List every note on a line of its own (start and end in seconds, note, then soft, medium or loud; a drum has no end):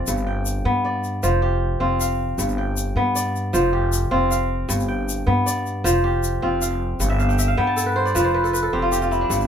0.00 0.12 F3 medium
0.00 0.71 C4 medium
0.00 1.01 F4 medium
0.00 0.34 B4 medium
0.00 0.80 D5 medium
0.07 0.61 G1 medium
0.07 1.28 G2 medium
0.07 shaker medium
0.17 shaker soft
0.27 1.20 G5 medium
0.46 shaker medium
0.65 1.19 G2 medium
0.65 1.29 B3 medium
0.85 1.95 D5 medium
1.04 shaker soft
1.23 1.77 F1 loud
1.23 2.43 F3 medium
1.23 2.42 C5 medium
1.23 shaker medium
1.42 2.83 G4 medium
1.80 2.34 F1 medium
1.80 3.03 C4 medium
1.80 3.32 F4 medium
2.00 3.00 F5 medium
2.00 shaker medium
2.38 2.92 G1 medium
2.38 3.59 G2 medium
2.38 shaker medium
2.49 shaker soft
2.58 3.51 G5 medium
2.77 shaker medium
2.96 3.50 G2 medium
2.96 3.60 B3 medium
3.15 4.26 D5 medium
3.15 shaker medium
3.36 shaker soft
3.53 4.08 F1 loud
3.53 4.74 F3 medium
3.53 4.72 C5 medium
3.53 shaker medium
3.73 5.14 G4 medium
3.93 shaker medium
4.11 4.65 F1 medium
4.11 5.33 C4 medium
4.11 5.62 F4 medium
4.31 5.31 F5 medium
4.31 shaker medium
4.69 5.23 G1 medium
4.69 5.89 G2 medium
4.69 shaker medium
4.80 shaker soft
4.88 5.82 G5 medium
5.09 shaker medium
5.27 5.81 G2 medium
5.27 5.90 B3 medium
5.46 6.57 D5 medium
5.46 shaker medium
5.66 shaker soft
5.84 6.38 F1 loud
5.84 7.05 F3 medium
5.84 7.03 C5 medium
5.84 shaker medium
6.04 7.45 G4 medium
6.24 shaker medium
6.42 6.96 F1 medium
6.42 7.63 C4 medium
6.42 7.16 F4 medium
6.62 7.19 F5 medium
6.62 shaker medium
7.00 7.53 G1 medium
7.00 8.20 G2 medium
7.00 shaker medium
7.10 7.38 E5 medium
7.19 7.44 F5 medium
7.19 shaker soft
7.29 7.57 G5 medium
7.29 shaker soft
7.38 8.21 E5 medium
7.38 shaker medium
7.48 8.48 F5 medium
7.57 8.11 G2 medium
7.57 8.02 B3 medium
7.57 8.51 G5 medium
7.67 8.54 A5 medium
7.77 8.43 A4 medium
7.77 shaker medium
7.86 8.15 B4 medium
7.96 8.21 C5 medium
8.05 9.16 D5 medium
8.05 shaker soft
8.15 8.69 F1 loud
8.15 9.35 F3 medium
8.15 8.34 B4 medium
8.15 shaker medium
8.24 8.59 C5 medium
8.34 8.53 B4 medium
8.44 8.62 A4 medium
8.44 shaker soft
8.53 8.79 B4 medium
8.53 shaker medium
8.63 9.47 A4 medium
8.73 9.26 F1 medium
8.73 9.47 C4 medium
8.73 8.91 G4 medium
8.82 9.01 F4 medium
8.92 9.47 G4 medium
8.92 shaker medium
9.02 9.47 F4 medium
9.02 shaker soft
9.11 9.47 E4 medium
9.11 shaker soft
9.21 9.47 D4 medium
9.30 9.47 G1 medium
9.30 9.47 G2 medium
9.30 shaker medium
9.41 shaker soft